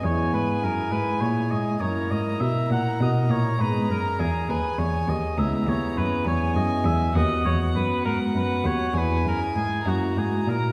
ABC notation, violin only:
X:1
M:12/8
L:1/8
Q:3/8=67
K:B
V:1 name="Violin"
g6 a3 a3- | a3 g3 a3 g3 | f3 f3 g3 a3 |]